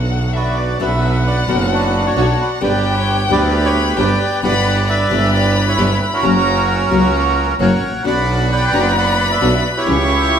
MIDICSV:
0, 0, Header, 1, 6, 480
1, 0, Start_track
1, 0, Key_signature, 2, "minor"
1, 0, Tempo, 453858
1, 843, Time_signature, 4, 2, 24, 8
1, 10992, End_track
2, 0, Start_track
2, 0, Title_t, "Violin"
2, 0, Program_c, 0, 40
2, 0, Note_on_c, 0, 78, 75
2, 356, Note_on_c, 0, 76, 67
2, 371, Note_off_c, 0, 78, 0
2, 603, Note_on_c, 0, 74, 59
2, 618, Note_off_c, 0, 76, 0
2, 833, Note_off_c, 0, 74, 0
2, 839, Note_on_c, 0, 78, 83
2, 2765, Note_on_c, 0, 79, 101
2, 2780, Note_off_c, 0, 78, 0
2, 3711, Note_on_c, 0, 83, 97
2, 3727, Note_off_c, 0, 79, 0
2, 4196, Note_on_c, 0, 79, 90
2, 4212, Note_off_c, 0, 83, 0
2, 4665, Note_off_c, 0, 79, 0
2, 4672, Note_on_c, 0, 83, 111
2, 5120, Note_off_c, 0, 83, 0
2, 5157, Note_on_c, 0, 83, 99
2, 6590, Note_on_c, 0, 82, 99
2, 6606, Note_off_c, 0, 83, 0
2, 7065, Note_off_c, 0, 82, 0
2, 7071, Note_on_c, 0, 82, 81
2, 8231, Note_off_c, 0, 82, 0
2, 8505, Note_on_c, 0, 83, 104
2, 10434, Note_on_c, 0, 85, 111
2, 10450, Note_off_c, 0, 83, 0
2, 10992, Note_off_c, 0, 85, 0
2, 10992, End_track
3, 0, Start_track
3, 0, Title_t, "Bandoneon"
3, 0, Program_c, 1, 23
3, 371, Note_on_c, 1, 74, 67
3, 379, Note_on_c, 1, 71, 49
3, 382, Note_on_c, 1, 66, 48
3, 820, Note_off_c, 1, 71, 0
3, 822, Note_off_c, 1, 66, 0
3, 859, Note_on_c, 1, 76, 78
3, 863, Note_off_c, 1, 74, 0
3, 865, Note_on_c, 1, 71, 57
3, 1299, Note_off_c, 1, 76, 0
3, 1344, Note_on_c, 1, 74, 77
3, 1571, Note_on_c, 1, 70, 65
3, 1581, Note_off_c, 1, 74, 0
3, 1773, Note_off_c, 1, 71, 0
3, 1791, Note_off_c, 1, 70, 0
3, 1824, Note_on_c, 1, 71, 75
3, 1831, Note_on_c, 1, 62, 55
3, 1835, Note_on_c, 1, 66, 56
3, 2171, Note_off_c, 1, 66, 0
3, 2177, Note_on_c, 1, 73, 81
3, 2185, Note_off_c, 1, 71, 0
3, 2186, Note_on_c, 1, 66, 58
3, 2542, Note_off_c, 1, 73, 0
3, 2548, Note_on_c, 1, 71, 76
3, 2651, Note_off_c, 1, 71, 0
3, 2734, Note_off_c, 1, 66, 0
3, 2736, Note_off_c, 1, 62, 0
3, 2781, Note_on_c, 1, 74, 88
3, 2786, Note_on_c, 1, 71, 65
3, 2790, Note_on_c, 1, 67, 63
3, 3108, Note_off_c, 1, 74, 0
3, 3129, Note_off_c, 1, 67, 0
3, 3140, Note_on_c, 1, 73, 75
3, 3145, Note_on_c, 1, 67, 59
3, 3466, Note_off_c, 1, 73, 0
3, 3495, Note_off_c, 1, 67, 0
3, 3496, Note_off_c, 1, 71, 0
3, 3509, Note_on_c, 1, 74, 80
3, 3511, Note_on_c, 1, 67, 57
3, 3512, Note_on_c, 1, 71, 63
3, 3851, Note_off_c, 1, 67, 0
3, 3860, Note_on_c, 1, 73, 79
3, 3865, Note_off_c, 1, 74, 0
3, 3867, Note_on_c, 1, 67, 61
3, 4185, Note_off_c, 1, 73, 0
3, 4215, Note_off_c, 1, 71, 0
3, 4217, Note_off_c, 1, 67, 0
3, 4225, Note_on_c, 1, 74, 85
3, 4231, Note_on_c, 1, 71, 58
3, 4233, Note_on_c, 1, 67, 60
3, 4659, Note_off_c, 1, 74, 0
3, 4662, Note_off_c, 1, 71, 0
3, 4663, Note_off_c, 1, 67, 0
3, 4694, Note_on_c, 1, 78, 89
3, 4699, Note_on_c, 1, 74, 69
3, 4702, Note_on_c, 1, 71, 69
3, 5163, Note_off_c, 1, 71, 0
3, 5174, Note_on_c, 1, 76, 97
3, 5179, Note_off_c, 1, 78, 0
3, 5179, Note_on_c, 1, 71, 65
3, 5603, Note_off_c, 1, 74, 0
3, 5611, Note_off_c, 1, 76, 0
3, 5638, Note_off_c, 1, 71, 0
3, 5645, Note_on_c, 1, 74, 93
3, 5654, Note_on_c, 1, 71, 72
3, 5974, Note_off_c, 1, 74, 0
3, 6004, Note_on_c, 1, 73, 84
3, 6010, Note_on_c, 1, 64, 65
3, 6333, Note_off_c, 1, 73, 0
3, 6345, Note_off_c, 1, 71, 0
3, 6361, Note_on_c, 1, 71, 75
3, 6413, Note_off_c, 1, 71, 0
3, 6486, Note_on_c, 1, 70, 89
3, 6490, Note_on_c, 1, 61, 65
3, 6492, Note_on_c, 1, 66, 67
3, 6558, Note_off_c, 1, 64, 0
3, 7997, Note_off_c, 1, 70, 0
3, 7999, Note_off_c, 1, 61, 0
3, 8001, Note_off_c, 1, 66, 0
3, 8050, Note_on_c, 1, 73, 61
3, 8051, Note_on_c, 1, 78, 83
3, 8057, Note_on_c, 1, 70, 60
3, 8490, Note_off_c, 1, 73, 0
3, 8493, Note_off_c, 1, 70, 0
3, 8515, Note_off_c, 1, 78, 0
3, 8529, Note_on_c, 1, 74, 69
3, 8530, Note_on_c, 1, 83, 93
3, 8531, Note_on_c, 1, 78, 70
3, 8970, Note_off_c, 1, 83, 0
3, 9000, Note_off_c, 1, 74, 0
3, 9010, Note_on_c, 1, 71, 73
3, 9012, Note_on_c, 1, 79, 93
3, 9016, Note_on_c, 1, 74, 69
3, 9442, Note_off_c, 1, 78, 0
3, 9451, Note_off_c, 1, 79, 0
3, 9476, Note_off_c, 1, 74, 0
3, 9477, Note_off_c, 1, 71, 0
3, 9492, Note_on_c, 1, 71, 66
3, 9492, Note_on_c, 1, 74, 66
3, 9494, Note_on_c, 1, 78, 92
3, 9821, Note_off_c, 1, 78, 0
3, 9837, Note_off_c, 1, 71, 0
3, 9852, Note_on_c, 1, 71, 63
3, 9854, Note_on_c, 1, 76, 81
3, 10181, Note_off_c, 1, 76, 0
3, 10202, Note_off_c, 1, 74, 0
3, 10218, Note_on_c, 1, 74, 76
3, 10267, Note_off_c, 1, 74, 0
3, 10333, Note_on_c, 1, 64, 66
3, 10337, Note_on_c, 1, 67, 66
3, 10337, Note_on_c, 1, 73, 93
3, 10403, Note_off_c, 1, 71, 0
3, 10992, Note_off_c, 1, 64, 0
3, 10992, Note_off_c, 1, 67, 0
3, 10992, Note_off_c, 1, 73, 0
3, 10992, End_track
4, 0, Start_track
4, 0, Title_t, "String section"
4, 0, Program_c, 2, 48
4, 0, Note_on_c, 2, 59, 62
4, 0, Note_on_c, 2, 62, 58
4, 0, Note_on_c, 2, 66, 65
4, 745, Note_off_c, 2, 59, 0
4, 746, Note_off_c, 2, 62, 0
4, 748, Note_off_c, 2, 66, 0
4, 837, Note_on_c, 2, 59, 71
4, 842, Note_on_c, 2, 62, 69
4, 844, Note_on_c, 2, 66, 76
4, 1525, Note_off_c, 2, 59, 0
4, 1528, Note_off_c, 2, 62, 0
4, 1529, Note_off_c, 2, 66, 0
4, 1557, Note_on_c, 2, 59, 76
4, 1560, Note_on_c, 2, 62, 70
4, 1563, Note_on_c, 2, 66, 86
4, 2246, Note_off_c, 2, 59, 0
4, 2247, Note_off_c, 2, 62, 0
4, 2249, Note_off_c, 2, 66, 0
4, 2282, Note_on_c, 2, 59, 72
4, 2286, Note_on_c, 2, 66, 82
4, 2287, Note_on_c, 2, 62, 70
4, 2485, Note_off_c, 2, 59, 0
4, 2487, Note_off_c, 2, 66, 0
4, 2488, Note_off_c, 2, 62, 0
4, 2770, Note_on_c, 2, 59, 73
4, 2770, Note_on_c, 2, 62, 71
4, 2775, Note_on_c, 2, 67, 83
4, 3450, Note_off_c, 2, 59, 0
4, 3450, Note_off_c, 2, 62, 0
4, 3452, Note_off_c, 2, 67, 0
4, 3482, Note_on_c, 2, 59, 81
4, 3485, Note_on_c, 2, 62, 74
4, 3486, Note_on_c, 2, 67, 85
4, 4164, Note_off_c, 2, 59, 0
4, 4166, Note_off_c, 2, 62, 0
4, 4166, Note_off_c, 2, 67, 0
4, 4199, Note_on_c, 2, 59, 81
4, 4203, Note_on_c, 2, 62, 70
4, 4204, Note_on_c, 2, 67, 82
4, 4401, Note_off_c, 2, 59, 0
4, 4403, Note_off_c, 2, 62, 0
4, 4403, Note_off_c, 2, 67, 0
4, 4676, Note_on_c, 2, 62, 76
4, 4679, Note_on_c, 2, 64, 72
4, 4680, Note_on_c, 2, 67, 84
4, 5359, Note_off_c, 2, 62, 0
4, 5361, Note_off_c, 2, 64, 0
4, 5361, Note_off_c, 2, 67, 0
4, 5393, Note_on_c, 2, 62, 85
4, 5396, Note_on_c, 2, 64, 82
4, 5397, Note_on_c, 2, 67, 93
4, 6075, Note_off_c, 2, 62, 0
4, 6077, Note_off_c, 2, 64, 0
4, 6078, Note_off_c, 2, 67, 0
4, 6105, Note_on_c, 2, 62, 75
4, 6107, Note_on_c, 2, 64, 69
4, 6110, Note_on_c, 2, 67, 82
4, 6310, Note_off_c, 2, 62, 0
4, 6311, Note_off_c, 2, 64, 0
4, 6313, Note_off_c, 2, 67, 0
4, 6586, Note_on_c, 2, 58, 70
4, 6587, Note_on_c, 2, 61, 70
4, 6589, Note_on_c, 2, 66, 85
4, 7272, Note_off_c, 2, 58, 0
4, 7273, Note_off_c, 2, 61, 0
4, 7274, Note_off_c, 2, 66, 0
4, 7303, Note_on_c, 2, 58, 81
4, 7306, Note_on_c, 2, 61, 74
4, 7307, Note_on_c, 2, 66, 87
4, 7992, Note_off_c, 2, 58, 0
4, 7994, Note_off_c, 2, 61, 0
4, 7994, Note_off_c, 2, 66, 0
4, 8030, Note_on_c, 2, 58, 71
4, 8032, Note_on_c, 2, 61, 61
4, 8032, Note_on_c, 2, 66, 76
4, 8234, Note_off_c, 2, 58, 0
4, 8235, Note_off_c, 2, 61, 0
4, 8235, Note_off_c, 2, 66, 0
4, 8515, Note_on_c, 2, 59, 71
4, 8516, Note_on_c, 2, 62, 67
4, 8520, Note_on_c, 2, 66, 80
4, 9200, Note_off_c, 2, 59, 0
4, 9200, Note_off_c, 2, 62, 0
4, 9202, Note_off_c, 2, 66, 0
4, 9230, Note_on_c, 2, 59, 75
4, 9232, Note_on_c, 2, 66, 86
4, 9233, Note_on_c, 2, 62, 71
4, 9918, Note_off_c, 2, 59, 0
4, 9919, Note_off_c, 2, 62, 0
4, 9919, Note_off_c, 2, 66, 0
4, 9949, Note_on_c, 2, 59, 79
4, 9952, Note_on_c, 2, 62, 69
4, 9955, Note_on_c, 2, 66, 86
4, 10155, Note_off_c, 2, 59, 0
4, 10156, Note_off_c, 2, 62, 0
4, 10157, Note_off_c, 2, 66, 0
4, 10429, Note_on_c, 2, 61, 80
4, 10433, Note_on_c, 2, 64, 68
4, 10435, Note_on_c, 2, 67, 84
4, 10992, Note_off_c, 2, 61, 0
4, 10992, Note_off_c, 2, 64, 0
4, 10992, Note_off_c, 2, 67, 0
4, 10992, End_track
5, 0, Start_track
5, 0, Title_t, "Nylon-string guitar"
5, 0, Program_c, 3, 24
5, 0, Note_on_c, 3, 47, 78
5, 0, Note_on_c, 3, 50, 85
5, 0, Note_on_c, 3, 59, 81
5, 0, Note_on_c, 3, 62, 79
5, 0, Note_on_c, 3, 66, 81
5, 827, Note_off_c, 3, 47, 0
5, 829, Note_off_c, 3, 50, 0
5, 834, Note_off_c, 3, 59, 0
5, 838, Note_off_c, 3, 62, 0
5, 840, Note_off_c, 3, 66, 0
5, 840, Note_on_c, 3, 47, 80
5, 842, Note_on_c, 3, 50, 79
5, 847, Note_on_c, 3, 59, 80
5, 851, Note_on_c, 3, 62, 87
5, 853, Note_on_c, 3, 66, 84
5, 937, Note_off_c, 3, 47, 0
5, 938, Note_off_c, 3, 50, 0
5, 940, Note_off_c, 3, 59, 0
5, 942, Note_off_c, 3, 62, 0
5, 943, Note_off_c, 3, 66, 0
5, 1565, Note_on_c, 3, 47, 72
5, 1566, Note_on_c, 3, 50, 84
5, 1569, Note_on_c, 3, 59, 86
5, 1571, Note_on_c, 3, 62, 78
5, 1577, Note_on_c, 3, 66, 79
5, 1660, Note_off_c, 3, 47, 0
5, 1660, Note_off_c, 3, 50, 0
5, 1662, Note_off_c, 3, 59, 0
5, 1663, Note_off_c, 3, 62, 0
5, 1666, Note_off_c, 3, 66, 0
5, 2284, Note_on_c, 3, 47, 71
5, 2288, Note_on_c, 3, 50, 79
5, 2289, Note_on_c, 3, 59, 81
5, 2292, Note_on_c, 3, 62, 80
5, 2294, Note_on_c, 3, 66, 80
5, 2380, Note_off_c, 3, 47, 0
5, 2382, Note_off_c, 3, 50, 0
5, 2382, Note_off_c, 3, 59, 0
5, 2383, Note_off_c, 3, 62, 0
5, 2384, Note_off_c, 3, 66, 0
5, 2757, Note_on_c, 3, 47, 81
5, 2759, Note_on_c, 3, 50, 85
5, 2762, Note_on_c, 3, 55, 90
5, 2764, Note_on_c, 3, 59, 86
5, 2766, Note_on_c, 3, 67, 89
5, 2856, Note_off_c, 3, 47, 0
5, 2857, Note_off_c, 3, 50, 0
5, 2858, Note_off_c, 3, 55, 0
5, 2859, Note_off_c, 3, 59, 0
5, 2860, Note_off_c, 3, 67, 0
5, 3478, Note_on_c, 3, 47, 83
5, 3483, Note_on_c, 3, 50, 82
5, 3483, Note_on_c, 3, 55, 87
5, 3488, Note_on_c, 3, 59, 91
5, 3492, Note_on_c, 3, 67, 92
5, 3575, Note_off_c, 3, 47, 0
5, 3578, Note_off_c, 3, 50, 0
5, 3578, Note_off_c, 3, 55, 0
5, 3580, Note_off_c, 3, 59, 0
5, 3582, Note_off_c, 3, 67, 0
5, 4196, Note_on_c, 3, 47, 78
5, 4200, Note_on_c, 3, 50, 74
5, 4202, Note_on_c, 3, 55, 79
5, 4203, Note_on_c, 3, 59, 85
5, 4210, Note_on_c, 3, 67, 90
5, 4293, Note_off_c, 3, 47, 0
5, 4295, Note_off_c, 3, 50, 0
5, 4296, Note_off_c, 3, 55, 0
5, 4297, Note_off_c, 3, 59, 0
5, 4300, Note_off_c, 3, 67, 0
5, 4679, Note_on_c, 3, 47, 87
5, 4680, Note_on_c, 3, 50, 86
5, 4683, Note_on_c, 3, 55, 92
5, 4687, Note_on_c, 3, 59, 94
5, 4691, Note_on_c, 3, 64, 92
5, 4774, Note_off_c, 3, 47, 0
5, 4774, Note_off_c, 3, 50, 0
5, 4776, Note_off_c, 3, 55, 0
5, 4778, Note_off_c, 3, 59, 0
5, 4780, Note_off_c, 3, 64, 0
5, 5393, Note_on_c, 3, 47, 81
5, 5397, Note_on_c, 3, 50, 85
5, 5399, Note_on_c, 3, 55, 87
5, 5404, Note_on_c, 3, 59, 100
5, 5407, Note_on_c, 3, 64, 91
5, 5490, Note_off_c, 3, 47, 0
5, 5492, Note_off_c, 3, 50, 0
5, 5493, Note_off_c, 3, 55, 0
5, 5495, Note_off_c, 3, 59, 0
5, 5496, Note_off_c, 3, 64, 0
5, 6111, Note_on_c, 3, 47, 77
5, 6117, Note_on_c, 3, 50, 78
5, 6117, Note_on_c, 3, 55, 85
5, 6121, Note_on_c, 3, 59, 79
5, 6121, Note_on_c, 3, 64, 97
5, 6207, Note_off_c, 3, 47, 0
5, 6210, Note_off_c, 3, 50, 0
5, 6210, Note_off_c, 3, 55, 0
5, 6212, Note_off_c, 3, 59, 0
5, 6212, Note_off_c, 3, 64, 0
5, 6587, Note_on_c, 3, 49, 85
5, 6589, Note_on_c, 3, 54, 97
5, 6593, Note_on_c, 3, 58, 88
5, 6595, Note_on_c, 3, 61, 90
5, 6599, Note_on_c, 3, 66, 90
5, 6684, Note_off_c, 3, 49, 0
5, 6685, Note_off_c, 3, 54, 0
5, 6687, Note_off_c, 3, 58, 0
5, 6688, Note_off_c, 3, 61, 0
5, 6690, Note_off_c, 3, 66, 0
5, 7304, Note_on_c, 3, 49, 78
5, 7309, Note_on_c, 3, 54, 84
5, 7311, Note_on_c, 3, 58, 77
5, 7312, Note_on_c, 3, 61, 86
5, 7312, Note_on_c, 3, 66, 89
5, 7403, Note_off_c, 3, 49, 0
5, 7405, Note_off_c, 3, 54, 0
5, 7406, Note_off_c, 3, 58, 0
5, 7407, Note_off_c, 3, 61, 0
5, 7407, Note_off_c, 3, 66, 0
5, 8025, Note_on_c, 3, 49, 67
5, 8032, Note_on_c, 3, 54, 78
5, 8033, Note_on_c, 3, 58, 82
5, 8034, Note_on_c, 3, 61, 80
5, 8036, Note_on_c, 3, 66, 75
5, 8125, Note_off_c, 3, 49, 0
5, 8128, Note_off_c, 3, 54, 0
5, 8128, Note_off_c, 3, 58, 0
5, 8129, Note_off_c, 3, 61, 0
5, 8130, Note_off_c, 3, 66, 0
5, 8505, Note_on_c, 3, 47, 79
5, 8508, Note_on_c, 3, 50, 76
5, 8510, Note_on_c, 3, 59, 85
5, 8513, Note_on_c, 3, 62, 83
5, 8514, Note_on_c, 3, 66, 82
5, 8605, Note_off_c, 3, 47, 0
5, 8606, Note_off_c, 3, 50, 0
5, 8607, Note_off_c, 3, 59, 0
5, 8609, Note_off_c, 3, 62, 0
5, 8609, Note_off_c, 3, 66, 0
5, 9226, Note_on_c, 3, 47, 80
5, 9228, Note_on_c, 3, 50, 82
5, 9232, Note_on_c, 3, 59, 86
5, 9235, Note_on_c, 3, 62, 88
5, 9238, Note_on_c, 3, 66, 89
5, 9326, Note_off_c, 3, 47, 0
5, 9327, Note_off_c, 3, 50, 0
5, 9329, Note_off_c, 3, 59, 0
5, 9330, Note_off_c, 3, 62, 0
5, 9332, Note_off_c, 3, 66, 0
5, 9951, Note_on_c, 3, 47, 75
5, 9955, Note_on_c, 3, 50, 81
5, 9955, Note_on_c, 3, 59, 74
5, 9960, Note_on_c, 3, 62, 73
5, 9962, Note_on_c, 3, 66, 83
5, 10049, Note_off_c, 3, 47, 0
5, 10051, Note_off_c, 3, 50, 0
5, 10051, Note_off_c, 3, 59, 0
5, 10053, Note_off_c, 3, 62, 0
5, 10054, Note_off_c, 3, 66, 0
5, 10428, Note_on_c, 3, 49, 93
5, 10432, Note_on_c, 3, 52, 87
5, 10436, Note_on_c, 3, 55, 82
5, 10436, Note_on_c, 3, 61, 90
5, 10438, Note_on_c, 3, 64, 93
5, 10527, Note_off_c, 3, 49, 0
5, 10529, Note_off_c, 3, 52, 0
5, 10531, Note_off_c, 3, 55, 0
5, 10531, Note_off_c, 3, 61, 0
5, 10532, Note_off_c, 3, 64, 0
5, 10992, End_track
6, 0, Start_track
6, 0, Title_t, "Double bass"
6, 0, Program_c, 4, 43
6, 0, Note_on_c, 4, 35, 68
6, 747, Note_off_c, 4, 35, 0
6, 841, Note_on_c, 4, 35, 88
6, 1528, Note_off_c, 4, 35, 0
6, 1567, Note_on_c, 4, 30, 98
6, 2250, Note_off_c, 4, 30, 0
6, 2281, Note_on_c, 4, 35, 89
6, 2485, Note_off_c, 4, 35, 0
6, 2763, Note_on_c, 4, 31, 88
6, 3446, Note_off_c, 4, 31, 0
6, 3482, Note_on_c, 4, 38, 96
6, 4164, Note_off_c, 4, 38, 0
6, 4198, Note_on_c, 4, 31, 93
6, 4401, Note_off_c, 4, 31, 0
6, 4674, Note_on_c, 4, 31, 89
6, 5358, Note_off_c, 4, 31, 0
6, 5393, Note_on_c, 4, 31, 102
6, 6075, Note_off_c, 4, 31, 0
6, 6107, Note_on_c, 4, 31, 94
6, 6311, Note_off_c, 4, 31, 0
6, 6579, Note_on_c, 4, 30, 94
6, 7269, Note_off_c, 4, 30, 0
6, 7299, Note_on_c, 4, 37, 92
6, 7990, Note_off_c, 4, 37, 0
6, 8028, Note_on_c, 4, 30, 87
6, 8233, Note_off_c, 4, 30, 0
6, 8272, Note_on_c, 4, 33, 56
6, 8503, Note_off_c, 4, 33, 0
6, 8510, Note_on_c, 4, 35, 85
6, 9197, Note_off_c, 4, 35, 0
6, 9230, Note_on_c, 4, 30, 90
6, 9918, Note_off_c, 4, 30, 0
6, 9953, Note_on_c, 4, 35, 91
6, 10156, Note_off_c, 4, 35, 0
6, 10429, Note_on_c, 4, 37, 92
6, 10992, Note_off_c, 4, 37, 0
6, 10992, End_track
0, 0, End_of_file